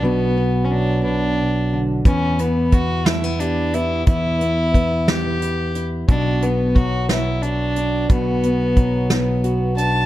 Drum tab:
HH |------|xxxxxx|xxxxxx|xxxxxx|
SD |------|---o--|---o--|---o--|
BD |------|o-o---|o-o---|o-o---|

HH |xxxxxx|
SD |---o--|
BD |o-o---|